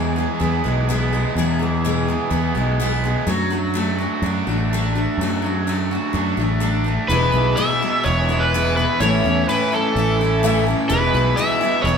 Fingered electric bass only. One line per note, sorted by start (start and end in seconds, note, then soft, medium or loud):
0.00 0.25 E2 medium
0.41 0.61 E2 medium
0.65 1.25 B1 medium
1.35 2.15 E2 medium
2.31 2.51 E2 loud
2.56 3.15 B1 medium
3.27 4.06 F#2 medium
4.22 4.42 F#2 medium
4.47 5.06 A1 medium
5.17 5.97 F#2 medium
6.14 6.34 F#2 medium
6.37 6.97 A1 medium
7.09 7.29 E1 loud
7.34 7.53 B1 medium
8.06 8.84 E1 medium
9.00 9.20 A1 loud
9.24 9.43 E2 medium
9.95 10.74 A1 loud
10.90 11.10 E1 loud
11.13 11.33 B1 medium
11.84 11.98 E1 loud